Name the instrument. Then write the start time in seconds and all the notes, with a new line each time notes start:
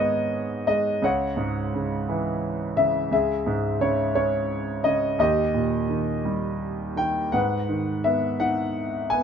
grand piano
Already playing: G#2 D#3 G#3 B3 B4 C#5 D#5
0.67 G#3 D#5
1.02 C#2 C#5 F#5
1.37 G#2
1.74 C#3
2.09 E3
2.77 C#3 E5
3.11 C#2 G#4 E5
3.46 G#2
3.81 C#3 C#5
4.15 C#4 C#5
4.84 C#3 D#5
5.19 D#2 G4 D#5
5.54 A#2
5.89 D#3
6.25 G3
6.96 D#3 G5
7.32 G#2 B4 F#5
7.69 D#3
8.04 B3 E5
8.40 D#4 F#5
9.10 B3 G#5